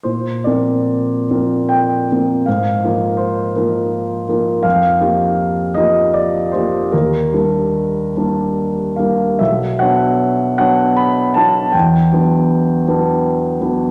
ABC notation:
X:1
M:3/4
L:1/8
Q:1/4=78
K:Bb
V:1 name="Grand piano"
c d3 g2 | f2 c3 z | f3 e d c | B4- B f |
[K:Bm] e f2 f b a | g4- g z |]
V:2 name="Grand piano"
B,, [F,B,CB]2 [F,B,CB]2 [F,B,CB] | _A,, [F,B,EB]2 [F,B,EB]2 [F,B,EB] | F,, [F,B,EG]2 [F,B,EG]2 [F,B,EG] | E,, [G,B,DB]2 [G,B,DB]2 [G,B,DB] |
[K:Bm] B,,, [F,B,Dc]2 [F,B,Dc]2 [F,B,Dc] | E,, [F,B,DB]2 [F,B,DB]2 [F,B,DB] |]